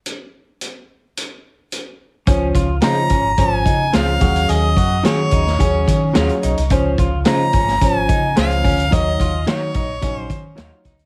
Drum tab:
HH |x---x---x---x---|x-x-x-x-x-x-x-xx|x-x-x-x-x-x-xxxx|x-x-x-x-x-x-xxox|
SD |----------------|----o-------o-o-|----o--o----o---|----o--o----o---|
BD |----------------|o-o---o-o-o---o-|--o---o-o-o-----|o-o---o-o-o---o-|

HH |x-x-x-x-x-x-x-xx|
SD |----o-------o-o-|
BD |o-o---o-o-o---o-|